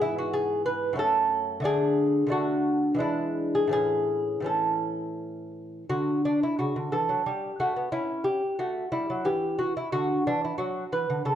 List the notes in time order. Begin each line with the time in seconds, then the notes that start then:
Already playing: G#2 E3 B3
0.01 E4
0.18 F#4
0.33 G#4
0.66 B4
0.93 F#2 A3 C#4
0.99 A4
1.60 D3 A3 D4
1.65 G#4
2.27 D3 A3 D4
2.31 F#4
2.94 E3 G#3
2.99 D4 E4
3.55 G#4
3.67 A2 E3 C#4
3.73 G#4
4.40 A2 E3 C#4
4.46 A4
5.89 D3 F#4
6.25 D4
6.43 E4
6.59 C#3 F#4
6.76 D3
6.92 E3 A4
7.09 F#3
7.26 G3 G4
7.60 A3 F#4
7.76 B3
7.92 C#4 E4
8.24 G4
8.59 A3 F#4
8.92 G3 E4
9.10 F#3
9.25 E3 G4
9.59 F#4
9.77 E4
9.92 D3 F#4
10.27 E3 D4
10.45 E4
10.58 F#3 F#4
10.92 E3 B4
11.10 D3
11.25 C#3 A4